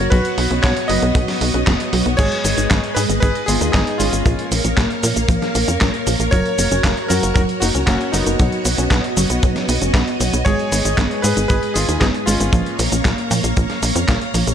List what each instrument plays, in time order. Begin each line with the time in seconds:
Already playing: string machine F#4 C#5, electric grand piano C#5
0.10 analog synth bass B1, synth arpeggio sound F#3, string machine B3 D#5, electric grand piano F#4 B4, kick, closed hi-hat
0.25 closed hi-hat
0.38 analog synth bass B1, synth arpeggio sound B3, open hi-hat
0.51 analog synth bass B1, synth arpeggio sound C#4, closed hi-hat
0.62 analog synth bass B1, synth arpeggio sound B3, electric grand piano F#4 C#5, kick, snare, clap, closed hi-hat
0.77 closed hi-hat
0.88 analog synth bass F#1, synth arpeggio sound F#3, electric grand piano B4 D#5, open hi-hat
1.02 analog synth bass B1, synth arpeggio sound B3, closed hi-hat
1.15 analog synth bass B1, synth arpeggio sound F#3, kick, closed hi-hat
1.28 snare, open hi-hat
1.41 analog synth bass B1, synth arpeggio sound B3, open hi-hat
1.54 analog synth bass B1, synth arpeggio sound C#4, closed hi-hat
1.67 analog synth bass F#1, synth arpeggio sound B3, kick, snare, clap, closed hi-hat
1.80 closed hi-hat
1.93 analog synth bass B1, synth arpeggio sound F#3, open hi-hat
2.06 analog synth bass B1, synth arpeggio sound B3, closed hi-hat
2.17 analog synth bass G#1, synth arpeggio sound G#3, string machine G#3 G#4 B4 D#5, electric grand piano G#4 C#5, kick, closed hi-hat, crash, cabasa
2.32 closed hi-hat
2.45 analog synth bass G#1, synth arpeggio sound B3, open hi-hat, cabasa
2.58 analog synth bass G#1, synth arpeggio sound D#4, closed hi-hat, cabasa
2.70 analog synth bass G#1, synth arpeggio sound B3, kick, snare, clap, closed hi-hat, cabasa
2.84 closed hi-hat
2.95 analog synth bass G#2, synth arpeggio sound G#3, electric grand piano G#4 B4, open hi-hat, cabasa
3.09 analog synth bass G#1, synth arpeggio sound B3, closed hi-hat, cabasa
3.20 analog synth bass G#1, synth arpeggio sound G#3, electric grand piano G#4 B4, kick, closed hi-hat, cabasa
3.35 closed hi-hat
3.46 analog synth bass G#1, synth arpeggio sound B3, electric grand piano F4 G#4, open hi-hat, cabasa
3.61 analog synth bass D#2, synth arpeggio sound D#4, closed hi-hat, cabasa
3.72 analog synth bass G#1, synth arpeggio sound B3, electric grand piano D#4 G#4, kick, snare, clap, closed hi-hat, cabasa
3.87 closed hi-hat
3.98 analog synth bass G#1, synth arpeggio sound G#3, electric grand piano C#4 F4, open hi-hat, cabasa
4.13 analog synth bass G#1, synth arpeggio sound B3, closed hi-hat, cabasa
4.26 analog synth bass A#1, synth arpeggio sound F3, string machine A#3 A#4 C#5 F5, kick, closed hi-hat, cabasa
4.39 closed hi-hat
4.52 analog synth bass A#1, synth arpeggio sound A#3, open hi-hat, cabasa
4.64 analog synth bass A#1, synth arpeggio sound C#4, closed hi-hat, cabasa
4.77 analog synth bass A#1, synth arpeggio sound A#3, kick, snare, clap, closed hi-hat, cabasa
4.90 closed hi-hat
5.03 analog synth bass A#2, synth arpeggio sound F3, open hi-hat, cabasa
5.16 analog synth bass A#1, synth arpeggio sound A#3, closed hi-hat, cabasa
5.29 analog synth bass A#1, synth arpeggio sound F3, kick, closed hi-hat, cabasa
5.42 snare, closed hi-hat
5.55 analog synth bass A#1, synth arpeggio sound A#3, open hi-hat, cabasa
5.68 analog synth bass F2, synth arpeggio sound C#4, closed hi-hat, cabasa
5.81 analog synth bass A#1, synth arpeggio sound A#3, kick, snare, clap, closed hi-hat, cabasa
5.94 closed hi-hat
6.07 analog synth bass A#1, synth arpeggio sound F3, open hi-hat, cabasa
6.20 analog synth bass A#1, synth arpeggio sound A#3, closed hi-hat, cabasa
6.31 analog synth bass F#1, synth arpeggio sound F#3, string machine F#4, electric grand piano A#4 C#5, kick, closed hi-hat, cabasa
6.46 closed hi-hat
6.58 analog synth bass F#1, synth arpeggio sound A#3, open hi-hat, cabasa
6.71 analog synth bass F#1, synth arpeggio sound C#4, closed hi-hat, cabasa
6.84 analog synth bass F#1, synth arpeggio sound A#3, kick, snare, clap, closed hi-hat, cabasa
6.97 closed hi-hat
7.08 analog synth bass F#2, synth arpeggio sound F#3, electric grand piano F#4 A#4, open hi-hat, cabasa
7.23 analog synth bass F#1, synth arpeggio sound A#3, closed hi-hat, cabasa
7.34 analog synth bass F#1, synth arpeggio sound F#3, electric grand piano F#4 A#4, kick, closed hi-hat, cabasa
7.49 closed hi-hat
7.60 analog synth bass F#1, synth arpeggio sound A#3, electric grand piano D#4 F#4, open hi-hat, cabasa
7.75 analog synth bass C#2, synth arpeggio sound C#4, closed hi-hat, cabasa
7.86 analog synth bass F#1, synth arpeggio sound A#3, electric grand piano C#4 F#4, kick, snare, clap, closed hi-hat, cabasa
8.01 closed hi-hat
8.12 analog synth bass F#1, synth arpeggio sound F#3, electric grand piano B3 D#4, open hi-hat, cabasa
8.26 analog synth bass F#1, synth arpeggio sound A#3, closed hi-hat, cabasa
8.39 analog synth bass B1, synth arpeggio sound F#3, string machine B3 D#5, kick, closed hi-hat, cabasa
8.52 closed hi-hat
8.65 analog synth bass B1, synth arpeggio sound B3, open hi-hat, cabasa
8.78 analog synth bass B1, synth arpeggio sound C#4, closed hi-hat, cabasa
8.91 analog synth bass B1, synth arpeggio sound B3, kick, snare, clap, closed hi-hat, cabasa
9.04 closed hi-hat
9.17 analog synth bass F#1, synth arpeggio sound F#3, open hi-hat, cabasa
9.30 analog synth bass B1, synth arpeggio sound B3, closed hi-hat, cabasa
9.43 analog synth bass B1, synth arpeggio sound F#3, kick, closed hi-hat, cabasa
9.56 snare, closed hi-hat
9.69 analog synth bass B1, synth arpeggio sound B3, open hi-hat, cabasa
9.82 analog synth bass F#1, synth arpeggio sound C#4, closed hi-hat, cabasa
9.94 analog synth bass B1, synth arpeggio sound B3, kick, snare, clap, closed hi-hat, cabasa
10.08 closed hi-hat
10.20 analog synth bass B1, synth arpeggio sound F#3, open hi-hat, cabasa
10.33 analog synth bass B1, synth arpeggio sound B3, closed hi-hat, cabasa
10.45 analog synth bass G#1, string machine G#3 G#4 B4, synth arpeggio sound G#3, electric grand piano G#4 C#5, kick, closed hi-hat, cabasa
10.59 closed hi-hat
10.72 analog synth bass G#1, synth arpeggio sound B3, open hi-hat, cabasa
10.85 analog synth bass G#1, synth arpeggio sound D#4, closed hi-hat, cabasa
10.98 analog synth bass G#1, synth arpeggio sound B3, kick, snare, clap, closed hi-hat, cabasa
11.11 closed hi-hat
11.22 analog synth bass G#2, synth arpeggio sound G#3, electric grand piano G#4 B4, open hi-hat, cabasa
11.37 analog synth bass G#1, synth arpeggio sound B3, closed hi-hat, cabasa
11.48 analog synth bass G#1, synth arpeggio sound G#3, electric grand piano G#4 B4, kick, closed hi-hat, cabasa
11.63 closed hi-hat
11.74 analog synth bass G#1, synth arpeggio sound B3, electric grand piano F4 G#4, open hi-hat, cabasa
11.89 analog synth bass D#2, synth arpeggio sound D#4, closed hi-hat, cabasa
12.00 analog synth bass G#1, synth arpeggio sound B3, electric grand piano D#4 G#4, kick, snare, clap, closed hi-hat, cabasa
12.14 closed hi-hat
12.26 analog synth bass G#1, synth arpeggio sound G#3, electric grand piano C#4 F4, open hi-hat, cabasa
12.40 analog synth bass G#1, synth arpeggio sound B3, closed hi-hat, cabasa
12.53 analog synth bass A#1, synth arpeggio sound F3, string machine A#3 C#5 F5 A#5, kick, closed hi-hat, cabasa
12.66 closed hi-hat
12.79 analog synth bass A#1, synth arpeggio sound A#3, open hi-hat, cabasa
12.92 analog synth bass A#1, synth arpeggio sound C#4, closed hi-hat, cabasa
13.05 analog synth bass A#1, synth arpeggio sound A#3, kick, snare, clap, closed hi-hat, cabasa
13.18 closed hi-hat
13.31 analog synth bass A#2, synth arpeggio sound F3, open hi-hat, cabasa
13.44 analog synth bass A#1, synth arpeggio sound A#3, closed hi-hat, cabasa
13.57 analog synth bass A#1, synth arpeggio sound F3, kick, closed hi-hat, cabasa
13.70 snare, closed hi-hat
13.82 analog synth bass A#1, synth arpeggio sound A#3, open hi-hat, cabasa
13.95 analog synth bass F2, synth arpeggio sound C#4, closed hi-hat, cabasa
14.08 analog synth bass A#1, synth arpeggio sound A#3, kick, snare, clap, closed hi-hat, cabasa
14.21 closed hi-hat
14.34 analog synth bass A#1, synth arpeggio sound F3, open hi-hat, cabasa
14.47 analog synth bass A#1, synth arpeggio sound A#3, closed hi-hat, cabasa